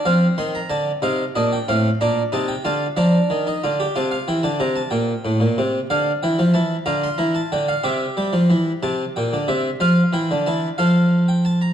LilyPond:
<<
  \new Staff \with { instrumentName = "Harpsichord" } { \time 12/8 \key bes \major \tempo 4. = 61 << { f''8 c'''16 bes''16 a''8 f''8 ees''16 g''16 f''8 bes''8 a''16 g''16 a''8 bes''4. | a''16 f''16 g''16 a''16 bes''16 a''16 g''4. f''8 g''8 a''8 bes''16 c'''16 bes''16 a''16 g''16 f''16 | e''4. a''8 g''8 e''8 f''8 g''8 a''8 f''8. g''16 a''16 bes''16 | } \\ { c'4. ees'8 d'8 c'8 d'8 ees'8 f'8 d'8. ees'16 f'16 g'16 | f'1~ f'8 f'4. | g'2. f'4. a'4. | } >> }
  \new Staff \with { instrumentName = "Harpsichord" } { \clef bass \time 12/8 \key bes \major f8 ees8 d8 c8 bes,8 a,8 bes,8 c8 d8 f8 ees8 d8 | c8 e16 d16 c8 bes,8 a,16 bes,16 c8 d8 e16 f16 e8 d8 e8 d8 | c8 g16 f16 e8 c8 bes,16 d16 c8 f8 e16 d16 e8 f4. | }
>>